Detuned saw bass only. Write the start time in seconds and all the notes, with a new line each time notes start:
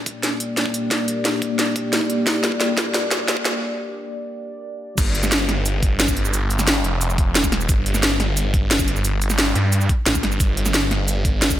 4.98 G1
5.49 G1
6.33 G1
6.84 F1
7.43 E1
7.69 G1
8.20 G1
9.05 G1
9.55 G2
10.06 A1
10.23 G1
10.40 G1
10.91 G1